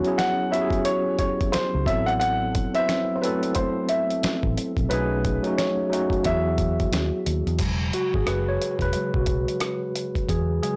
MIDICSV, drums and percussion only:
0, 0, Header, 1, 2, 480
1, 0, Start_track
1, 0, Key_signature, 4, "major"
1, 0, Tempo, 674157
1, 1565, Time_signature, 4, 2, 24, 8
1, 7663, End_track
2, 0, Start_track
2, 0, Title_t, "Drums"
2, 32, Note_on_c, 9, 42, 35
2, 103, Note_off_c, 9, 42, 0
2, 133, Note_on_c, 9, 26, 83
2, 134, Note_on_c, 9, 38, 114
2, 139, Note_on_c, 9, 42, 76
2, 204, Note_off_c, 9, 26, 0
2, 205, Note_off_c, 9, 38, 0
2, 210, Note_off_c, 9, 42, 0
2, 381, Note_on_c, 9, 42, 63
2, 452, Note_off_c, 9, 42, 0
2, 502, Note_on_c, 9, 36, 90
2, 517, Note_on_c, 9, 42, 34
2, 573, Note_off_c, 9, 36, 0
2, 588, Note_off_c, 9, 42, 0
2, 605, Note_on_c, 9, 42, 90
2, 676, Note_off_c, 9, 42, 0
2, 845, Note_on_c, 9, 42, 60
2, 846, Note_on_c, 9, 36, 94
2, 916, Note_off_c, 9, 42, 0
2, 917, Note_off_c, 9, 36, 0
2, 1001, Note_on_c, 9, 42, 36
2, 1002, Note_on_c, 9, 36, 93
2, 1073, Note_off_c, 9, 36, 0
2, 1073, Note_off_c, 9, 42, 0
2, 1091, Note_on_c, 9, 42, 96
2, 1096, Note_on_c, 9, 26, 84
2, 1097, Note_on_c, 9, 38, 100
2, 1162, Note_off_c, 9, 42, 0
2, 1167, Note_off_c, 9, 26, 0
2, 1168, Note_off_c, 9, 38, 0
2, 1326, Note_on_c, 9, 36, 110
2, 1336, Note_on_c, 9, 42, 78
2, 1398, Note_off_c, 9, 36, 0
2, 1407, Note_off_c, 9, 42, 0
2, 1483, Note_on_c, 9, 42, 31
2, 1555, Note_off_c, 9, 42, 0
2, 1575, Note_on_c, 9, 42, 76
2, 1646, Note_off_c, 9, 42, 0
2, 1814, Note_on_c, 9, 42, 65
2, 1817, Note_on_c, 9, 36, 94
2, 1885, Note_off_c, 9, 42, 0
2, 1888, Note_off_c, 9, 36, 0
2, 1955, Note_on_c, 9, 42, 34
2, 2026, Note_off_c, 9, 42, 0
2, 2056, Note_on_c, 9, 26, 90
2, 2057, Note_on_c, 9, 38, 97
2, 2062, Note_on_c, 9, 42, 75
2, 2128, Note_off_c, 9, 26, 0
2, 2128, Note_off_c, 9, 38, 0
2, 2133, Note_off_c, 9, 42, 0
2, 2304, Note_on_c, 9, 42, 75
2, 2375, Note_off_c, 9, 42, 0
2, 2441, Note_on_c, 9, 42, 34
2, 2513, Note_off_c, 9, 42, 0
2, 2526, Note_on_c, 9, 42, 82
2, 2533, Note_on_c, 9, 36, 88
2, 2597, Note_off_c, 9, 42, 0
2, 2604, Note_off_c, 9, 36, 0
2, 2767, Note_on_c, 9, 42, 57
2, 2838, Note_off_c, 9, 42, 0
2, 2922, Note_on_c, 9, 42, 37
2, 2994, Note_off_c, 9, 42, 0
2, 3014, Note_on_c, 9, 42, 87
2, 3020, Note_on_c, 9, 26, 88
2, 3020, Note_on_c, 9, 38, 114
2, 3086, Note_off_c, 9, 42, 0
2, 3091, Note_off_c, 9, 26, 0
2, 3092, Note_off_c, 9, 38, 0
2, 3155, Note_on_c, 9, 36, 85
2, 3227, Note_off_c, 9, 36, 0
2, 3257, Note_on_c, 9, 42, 76
2, 3328, Note_off_c, 9, 42, 0
2, 3394, Note_on_c, 9, 36, 77
2, 3402, Note_on_c, 9, 42, 29
2, 3465, Note_off_c, 9, 36, 0
2, 3473, Note_off_c, 9, 42, 0
2, 3494, Note_on_c, 9, 42, 83
2, 3565, Note_off_c, 9, 42, 0
2, 3735, Note_on_c, 9, 42, 60
2, 3737, Note_on_c, 9, 36, 88
2, 3806, Note_off_c, 9, 42, 0
2, 3808, Note_off_c, 9, 36, 0
2, 3874, Note_on_c, 9, 42, 34
2, 3945, Note_off_c, 9, 42, 0
2, 3976, Note_on_c, 9, 26, 85
2, 3977, Note_on_c, 9, 38, 115
2, 3982, Note_on_c, 9, 42, 72
2, 4047, Note_off_c, 9, 26, 0
2, 4048, Note_off_c, 9, 38, 0
2, 4053, Note_off_c, 9, 42, 0
2, 4223, Note_on_c, 9, 42, 71
2, 4294, Note_off_c, 9, 42, 0
2, 4343, Note_on_c, 9, 36, 98
2, 4362, Note_on_c, 9, 42, 32
2, 4414, Note_off_c, 9, 36, 0
2, 4434, Note_off_c, 9, 42, 0
2, 4446, Note_on_c, 9, 42, 79
2, 4452, Note_on_c, 9, 36, 84
2, 4517, Note_off_c, 9, 42, 0
2, 4524, Note_off_c, 9, 36, 0
2, 4685, Note_on_c, 9, 36, 91
2, 4686, Note_on_c, 9, 42, 65
2, 4756, Note_off_c, 9, 36, 0
2, 4757, Note_off_c, 9, 42, 0
2, 4840, Note_on_c, 9, 42, 33
2, 4841, Note_on_c, 9, 36, 89
2, 4911, Note_off_c, 9, 42, 0
2, 4912, Note_off_c, 9, 36, 0
2, 4931, Note_on_c, 9, 42, 84
2, 4937, Note_on_c, 9, 26, 85
2, 4937, Note_on_c, 9, 38, 101
2, 5002, Note_off_c, 9, 42, 0
2, 5008, Note_off_c, 9, 26, 0
2, 5008, Note_off_c, 9, 38, 0
2, 5172, Note_on_c, 9, 42, 73
2, 5243, Note_off_c, 9, 42, 0
2, 5319, Note_on_c, 9, 42, 28
2, 5390, Note_off_c, 9, 42, 0
2, 5401, Note_on_c, 9, 49, 86
2, 5404, Note_on_c, 9, 36, 103
2, 5408, Note_on_c, 9, 42, 84
2, 5473, Note_off_c, 9, 49, 0
2, 5475, Note_off_c, 9, 36, 0
2, 5479, Note_off_c, 9, 42, 0
2, 5648, Note_on_c, 9, 42, 58
2, 5720, Note_off_c, 9, 42, 0
2, 5795, Note_on_c, 9, 36, 75
2, 5867, Note_off_c, 9, 36, 0
2, 5886, Note_on_c, 9, 37, 101
2, 5891, Note_on_c, 9, 42, 66
2, 5957, Note_off_c, 9, 37, 0
2, 5962, Note_off_c, 9, 42, 0
2, 6134, Note_on_c, 9, 42, 66
2, 6206, Note_off_c, 9, 42, 0
2, 6259, Note_on_c, 9, 36, 89
2, 6272, Note_on_c, 9, 42, 34
2, 6330, Note_off_c, 9, 36, 0
2, 6343, Note_off_c, 9, 42, 0
2, 6358, Note_on_c, 9, 42, 76
2, 6429, Note_off_c, 9, 42, 0
2, 6508, Note_on_c, 9, 36, 86
2, 6579, Note_off_c, 9, 36, 0
2, 6595, Note_on_c, 9, 42, 65
2, 6600, Note_on_c, 9, 36, 77
2, 6666, Note_off_c, 9, 42, 0
2, 6671, Note_off_c, 9, 36, 0
2, 6752, Note_on_c, 9, 42, 36
2, 6823, Note_off_c, 9, 42, 0
2, 6838, Note_on_c, 9, 42, 84
2, 6844, Note_on_c, 9, 37, 103
2, 6909, Note_off_c, 9, 42, 0
2, 6915, Note_off_c, 9, 37, 0
2, 7088, Note_on_c, 9, 42, 75
2, 7159, Note_off_c, 9, 42, 0
2, 7229, Note_on_c, 9, 36, 71
2, 7234, Note_on_c, 9, 42, 33
2, 7301, Note_off_c, 9, 36, 0
2, 7306, Note_off_c, 9, 42, 0
2, 7323, Note_on_c, 9, 36, 89
2, 7326, Note_on_c, 9, 42, 83
2, 7395, Note_off_c, 9, 36, 0
2, 7398, Note_off_c, 9, 42, 0
2, 7570, Note_on_c, 9, 42, 61
2, 7642, Note_off_c, 9, 42, 0
2, 7663, End_track
0, 0, End_of_file